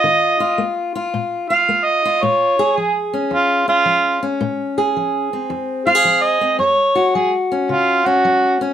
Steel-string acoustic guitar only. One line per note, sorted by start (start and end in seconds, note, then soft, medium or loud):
0.00 0.55 D#3 medium
0.00 0.40 F4 medium
0.40 0.95 F4 medium
0.58 1.09 A#3 medium
0.95 1.50 F4 medium
1.14 1.64 A#2 medium
1.50 2.05 F4 medium
1.69 2.19 A#3 medium
2.05 2.59 F4 medium
2.23 2.74 A#2 medium
2.59 4.40 G#4 medium
2.77 3.28 F3 medium
3.13 3.67 C#4 medium
3.31 3.82 F2 medium
3.68 4.22 C#4 medium
3.85 4.37 F3 medium
4.23 5.33 C#4 medium
4.41 4.92 A#2 medium
4.78 5.86 G#4 medium
4.97 5.47 F3 medium
5.33 6.40 C4 soft
5.50 6.01 F2 medium
5.87 5.95 F4 medium
5.95 6.59 G#4 soft
6.05 6.56 F3 medium
6.41 6.60 C4 medium
6.59 7.10 F#2 medium
6.95 8.73 F#4 medium
7.15 7.66 F#3 medium
7.52 8.05 C#4 medium
7.69 8.20 C#3 medium
8.06 8.60 C#4 medium
8.25 8.73 F#3 medium
8.61 8.73 C#4 medium